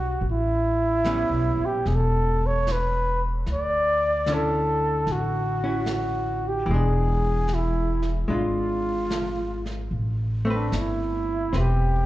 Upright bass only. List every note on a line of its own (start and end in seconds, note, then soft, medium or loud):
0.00 0.18 B1 medium
0.21 1.26 A1 medium
1.30 1.55 B1 soft
1.57 1.82 A#1 soft
1.86 3.42 E1 medium
3.46 5.03 D2 medium
5.07 6.63 A1 medium
6.67 8.24 E1 medium
8.28 9.87 G#1 medium
9.91 10.68 A1 medium
10.72 11.48 G1 medium
11.53 12.06 E1 medium